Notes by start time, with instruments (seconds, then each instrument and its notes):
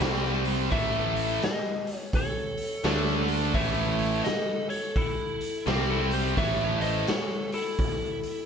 Already playing: lead electric guitar A4
0.00 picked electric bass C2, overdriven electric guitar C3 G3 C4, snare, open hi-hat
0.24 snare
0.45 open hi-hat
0.71 picked electric bass A1, overdriven electric guitar A2 E3 A3, lead electric guitar E5, kick, open hi-hat
1.16 open hi-hat
1.42 lead electric guitar D#5, snare, open hi-hat
1.87 open hi-hat
1.98 lead electric guitar C#5
2.13 lead electric guitar A4 C#5, kick, open hi-hat
2.58 open hi-hat
2.84 picked electric bass D2, overdriven electric guitar D3 A3 D4, snare, open hi-hat
3.07 snare
3.28 open hi-hat
3.54 picked electric bass A1, overdriven electric guitar A2 E3 A3, lead electric guitar C#5 E5, kick, open hi-hat
3.99 open hi-hat
4.24 lead electric guitar A4 D#5, snare, open hi-hat
4.69 lead electric guitar A4 C#5, open hi-hat
4.96 lead electric guitar E4 A4, kick, open hi-hat
5.41 open hi-hat
5.66 picked electric bass C2, overdriven electric guitar C3 G3 C4, lead electric guitar C4 G4, snare, open hi-hat
5.90 lead electric guitar E4 A4
6.11 lead electric guitar G4 C5, open hi-hat
6.37 picked electric bass A1, overdriven electric guitar A2 E3 A3, lead electric guitar C#5 E5, kick, open hi-hat
6.81 lead electric guitar C5 D#5, open hi-hat
7.07 lead electric guitar A4 C#5, snare, open hi-hat
7.52 lead electric guitar E4 A4, open hi-hat
7.79 kick, open hi-hat
8.23 open hi-hat